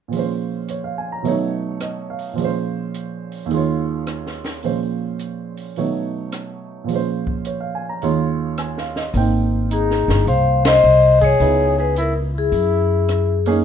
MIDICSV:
0, 0, Header, 1, 6, 480
1, 0, Start_track
1, 0, Key_signature, -4, "major"
1, 0, Tempo, 563380
1, 107, Time_signature, 4, 2, 24, 8
1, 11626, End_track
2, 0, Start_track
2, 0, Title_t, "Vibraphone"
2, 0, Program_c, 0, 11
2, 8290, Note_on_c, 0, 68, 63
2, 8728, Note_off_c, 0, 68, 0
2, 8760, Note_on_c, 0, 77, 90
2, 9055, Note_off_c, 0, 77, 0
2, 9089, Note_on_c, 0, 75, 88
2, 9527, Note_off_c, 0, 75, 0
2, 9581, Note_on_c, 0, 73, 86
2, 10013, Note_off_c, 0, 73, 0
2, 10054, Note_on_c, 0, 71, 75
2, 10191, Note_off_c, 0, 71, 0
2, 10221, Note_on_c, 0, 70, 67
2, 10359, Note_off_c, 0, 70, 0
2, 10550, Note_on_c, 0, 68, 72
2, 11455, Note_off_c, 0, 68, 0
2, 11626, End_track
3, 0, Start_track
3, 0, Title_t, "Trumpet"
3, 0, Program_c, 1, 56
3, 8274, Note_on_c, 1, 63, 65
3, 8720, Note_off_c, 1, 63, 0
3, 8756, Note_on_c, 1, 72, 77
3, 9053, Note_off_c, 1, 72, 0
3, 9073, Note_on_c, 1, 72, 86
3, 9519, Note_off_c, 1, 72, 0
3, 9552, Note_on_c, 1, 68, 77
3, 9998, Note_off_c, 1, 68, 0
3, 10036, Note_on_c, 1, 68, 67
3, 10182, Note_off_c, 1, 68, 0
3, 10202, Note_on_c, 1, 64, 72
3, 10339, Note_off_c, 1, 64, 0
3, 10517, Note_on_c, 1, 64, 66
3, 11438, Note_off_c, 1, 64, 0
3, 11626, End_track
4, 0, Start_track
4, 0, Title_t, "Grand piano"
4, 0, Program_c, 2, 0
4, 71, Note_on_c, 2, 46, 39
4, 96, Note_on_c, 2, 53, 37
4, 115, Note_on_c, 2, 56, 39
4, 140, Note_on_c, 2, 61, 38
4, 161, Note_on_c, 2, 72, 51
4, 599, Note_on_c, 2, 73, 39
4, 716, Note_on_c, 2, 77, 37
4, 818, Note_off_c, 2, 73, 0
4, 835, Note_on_c, 2, 80, 35
4, 918, Note_off_c, 2, 77, 0
4, 957, Note_on_c, 2, 82, 43
4, 981, Note_off_c, 2, 80, 0
4, 1045, Note_on_c, 2, 47, 50
4, 1050, Note_off_c, 2, 46, 0
4, 1060, Note_on_c, 2, 54, 47
4, 1063, Note_off_c, 2, 53, 0
4, 1068, Note_on_c, 2, 57, 45
4, 1073, Note_off_c, 2, 56, 0
4, 1081, Note_on_c, 2, 63, 44
4, 1085, Note_off_c, 2, 61, 0
4, 1089, Note_on_c, 2, 73, 56
4, 1095, Note_off_c, 2, 72, 0
4, 1121, Note_off_c, 2, 82, 0
4, 1549, Note_on_c, 2, 75, 38
4, 1790, Note_on_c, 2, 77, 37
4, 1922, Note_off_c, 2, 75, 0
4, 1987, Note_on_c, 2, 46, 42
4, 2008, Note_on_c, 2, 53, 43
4, 2018, Note_off_c, 2, 47, 0
4, 2025, Note_off_c, 2, 54, 0
4, 2029, Note_off_c, 2, 57, 0
4, 2036, Note_off_c, 2, 63, 0
4, 2036, Note_on_c, 2, 56, 43
4, 2040, Note_off_c, 2, 73, 0
4, 2059, Note_on_c, 2, 61, 42
4, 2083, Note_on_c, 2, 72, 53
4, 2125, Note_off_c, 2, 77, 0
4, 2947, Note_on_c, 2, 39, 52
4, 2970, Note_off_c, 2, 46, 0
4, 2971, Note_on_c, 2, 51, 49
4, 2980, Note_off_c, 2, 53, 0
4, 2981, Note_off_c, 2, 56, 0
4, 2993, Note_on_c, 2, 56, 50
4, 3005, Note_off_c, 2, 61, 0
4, 3014, Note_on_c, 2, 65, 44
4, 3017, Note_off_c, 2, 72, 0
4, 3041, Note_on_c, 2, 73, 53
4, 3930, Note_off_c, 2, 39, 0
4, 3942, Note_off_c, 2, 51, 0
4, 3945, Note_off_c, 2, 56, 0
4, 3949, Note_on_c, 2, 46, 41
4, 3953, Note_on_c, 2, 53, 33
4, 3958, Note_on_c, 2, 56, 34
4, 3962, Note_on_c, 2, 61, 37
4, 3963, Note_off_c, 2, 65, 0
4, 3964, Note_on_c, 2, 72, 44
4, 3977, Note_off_c, 2, 73, 0
4, 4911, Note_off_c, 2, 46, 0
4, 4913, Note_off_c, 2, 53, 0
4, 4916, Note_off_c, 2, 56, 0
4, 4916, Note_on_c, 2, 47, 45
4, 4918, Note_off_c, 2, 61, 0
4, 4919, Note_off_c, 2, 72, 0
4, 4922, Note_on_c, 2, 54, 39
4, 4922, Note_on_c, 2, 57, 39
4, 4928, Note_on_c, 2, 63, 42
4, 4928, Note_on_c, 2, 73, 48
4, 5830, Note_on_c, 2, 46, 40
4, 5855, Note_on_c, 2, 53, 37
4, 5875, Note_off_c, 2, 47, 0
4, 5878, Note_off_c, 2, 54, 0
4, 5878, Note_off_c, 2, 57, 0
4, 5880, Note_on_c, 2, 56, 34
4, 5881, Note_off_c, 2, 63, 0
4, 5881, Note_off_c, 2, 73, 0
4, 5901, Note_on_c, 2, 61, 38
4, 5926, Note_on_c, 2, 72, 47
4, 6362, Note_on_c, 2, 73, 40
4, 6479, Note_on_c, 2, 77, 41
4, 6582, Note_off_c, 2, 73, 0
4, 6603, Note_on_c, 2, 80, 37
4, 6682, Note_off_c, 2, 77, 0
4, 6726, Note_on_c, 2, 82, 42
4, 6747, Note_off_c, 2, 80, 0
4, 6812, Note_off_c, 2, 46, 0
4, 6824, Note_off_c, 2, 53, 0
4, 6828, Note_off_c, 2, 56, 0
4, 6836, Note_on_c, 2, 39, 54
4, 6840, Note_on_c, 2, 51, 45
4, 6841, Note_on_c, 2, 56, 50
4, 6847, Note_off_c, 2, 61, 0
4, 6847, Note_on_c, 2, 65, 51
4, 6847, Note_on_c, 2, 73, 58
4, 6860, Note_off_c, 2, 72, 0
4, 6888, Note_off_c, 2, 82, 0
4, 7318, Note_on_c, 2, 80, 35
4, 7480, Note_on_c, 2, 77, 37
4, 7614, Note_off_c, 2, 80, 0
4, 7642, Note_on_c, 2, 75, 43
4, 7725, Note_off_c, 2, 77, 0
4, 7795, Note_off_c, 2, 39, 0
4, 7796, Note_on_c, 2, 58, 47
4, 7797, Note_off_c, 2, 51, 0
4, 7797, Note_off_c, 2, 56, 0
4, 7800, Note_off_c, 2, 65, 0
4, 7800, Note_off_c, 2, 73, 0
4, 7806, Note_on_c, 2, 60, 43
4, 7809, Note_on_c, 2, 63, 44
4, 7815, Note_on_c, 2, 79, 45
4, 7886, Note_off_c, 2, 75, 0
4, 9138, Note_off_c, 2, 58, 0
4, 9143, Note_off_c, 2, 60, 0
4, 9145, Note_off_c, 2, 63, 0
4, 9148, Note_off_c, 2, 79, 0
4, 9721, Note_on_c, 2, 63, 43
4, 9722, Note_on_c, 2, 59, 44
4, 9728, Note_on_c, 2, 64, 40
4, 9735, Note_on_c, 2, 68, 53
4, 10452, Note_off_c, 2, 63, 0
4, 10453, Note_off_c, 2, 59, 0
4, 10455, Note_off_c, 2, 64, 0
4, 10459, Note_off_c, 2, 68, 0
4, 11470, Note_on_c, 2, 58, 60
4, 11479, Note_on_c, 2, 61, 59
4, 11480, Note_on_c, 2, 63, 55
4, 11483, Note_on_c, 2, 68, 68
4, 11613, Note_off_c, 2, 58, 0
4, 11617, Note_off_c, 2, 61, 0
4, 11618, Note_off_c, 2, 63, 0
4, 11619, Note_off_c, 2, 68, 0
4, 11626, End_track
5, 0, Start_track
5, 0, Title_t, "Upright bass"
5, 0, Program_c, 3, 32
5, 7785, Note_on_c, 3, 32, 84
5, 8556, Note_off_c, 3, 32, 0
5, 8589, Note_on_c, 3, 31, 69
5, 8739, Note_off_c, 3, 31, 0
5, 8750, Note_on_c, 3, 36, 78
5, 9197, Note_off_c, 3, 36, 0
5, 9232, Note_on_c, 3, 36, 68
5, 9678, Note_off_c, 3, 36, 0
5, 9712, Note_on_c, 3, 37, 79
5, 10636, Note_off_c, 3, 37, 0
5, 10666, Note_on_c, 3, 42, 72
5, 11592, Note_off_c, 3, 42, 0
5, 11626, End_track
6, 0, Start_track
6, 0, Title_t, "Drums"
6, 107, Note_on_c, 9, 46, 34
6, 192, Note_off_c, 9, 46, 0
6, 584, Note_on_c, 9, 42, 44
6, 669, Note_off_c, 9, 42, 0
6, 1066, Note_on_c, 9, 46, 36
6, 1151, Note_off_c, 9, 46, 0
6, 1537, Note_on_c, 9, 42, 42
6, 1540, Note_on_c, 9, 37, 53
6, 1623, Note_off_c, 9, 42, 0
6, 1625, Note_off_c, 9, 37, 0
6, 1864, Note_on_c, 9, 46, 30
6, 1949, Note_off_c, 9, 46, 0
6, 2026, Note_on_c, 9, 46, 35
6, 2111, Note_off_c, 9, 46, 0
6, 2508, Note_on_c, 9, 42, 39
6, 2593, Note_off_c, 9, 42, 0
6, 2827, Note_on_c, 9, 46, 33
6, 2912, Note_off_c, 9, 46, 0
6, 2989, Note_on_c, 9, 46, 33
6, 3074, Note_off_c, 9, 46, 0
6, 3466, Note_on_c, 9, 42, 40
6, 3468, Note_on_c, 9, 37, 56
6, 3551, Note_off_c, 9, 42, 0
6, 3554, Note_off_c, 9, 37, 0
6, 3634, Note_on_c, 9, 38, 23
6, 3719, Note_off_c, 9, 38, 0
6, 3785, Note_on_c, 9, 46, 30
6, 3787, Note_on_c, 9, 38, 35
6, 3870, Note_off_c, 9, 46, 0
6, 3872, Note_off_c, 9, 38, 0
6, 3942, Note_on_c, 9, 46, 34
6, 4027, Note_off_c, 9, 46, 0
6, 4425, Note_on_c, 9, 42, 39
6, 4510, Note_off_c, 9, 42, 0
6, 4748, Note_on_c, 9, 46, 34
6, 4833, Note_off_c, 9, 46, 0
6, 4909, Note_on_c, 9, 46, 32
6, 4994, Note_off_c, 9, 46, 0
6, 5387, Note_on_c, 9, 42, 45
6, 5389, Note_on_c, 9, 37, 54
6, 5472, Note_off_c, 9, 42, 0
6, 5475, Note_off_c, 9, 37, 0
6, 5868, Note_on_c, 9, 46, 39
6, 5953, Note_off_c, 9, 46, 0
6, 6193, Note_on_c, 9, 36, 44
6, 6278, Note_off_c, 9, 36, 0
6, 6346, Note_on_c, 9, 42, 44
6, 6432, Note_off_c, 9, 42, 0
6, 6831, Note_on_c, 9, 46, 34
6, 6917, Note_off_c, 9, 46, 0
6, 7308, Note_on_c, 9, 42, 41
6, 7310, Note_on_c, 9, 37, 57
6, 7393, Note_off_c, 9, 42, 0
6, 7396, Note_off_c, 9, 37, 0
6, 7477, Note_on_c, 9, 38, 25
6, 7562, Note_off_c, 9, 38, 0
6, 7633, Note_on_c, 9, 38, 34
6, 7718, Note_off_c, 9, 38, 0
6, 7789, Note_on_c, 9, 46, 42
6, 7874, Note_off_c, 9, 46, 0
6, 8273, Note_on_c, 9, 42, 48
6, 8358, Note_off_c, 9, 42, 0
6, 8438, Note_on_c, 9, 38, 27
6, 8524, Note_off_c, 9, 38, 0
6, 8598, Note_on_c, 9, 38, 43
6, 8683, Note_off_c, 9, 38, 0
6, 8752, Note_on_c, 9, 46, 36
6, 8837, Note_off_c, 9, 46, 0
6, 9073, Note_on_c, 9, 51, 54
6, 9075, Note_on_c, 9, 38, 68
6, 9158, Note_off_c, 9, 51, 0
6, 9160, Note_off_c, 9, 38, 0
6, 9554, Note_on_c, 9, 46, 34
6, 9556, Note_on_c, 9, 36, 49
6, 9639, Note_off_c, 9, 46, 0
6, 9641, Note_off_c, 9, 36, 0
6, 9716, Note_on_c, 9, 46, 41
6, 9801, Note_off_c, 9, 46, 0
6, 10193, Note_on_c, 9, 42, 47
6, 10278, Note_off_c, 9, 42, 0
6, 10673, Note_on_c, 9, 46, 40
6, 10758, Note_off_c, 9, 46, 0
6, 11150, Note_on_c, 9, 42, 44
6, 11152, Note_on_c, 9, 37, 54
6, 11235, Note_off_c, 9, 42, 0
6, 11237, Note_off_c, 9, 37, 0
6, 11467, Note_on_c, 9, 46, 41
6, 11552, Note_off_c, 9, 46, 0
6, 11626, End_track
0, 0, End_of_file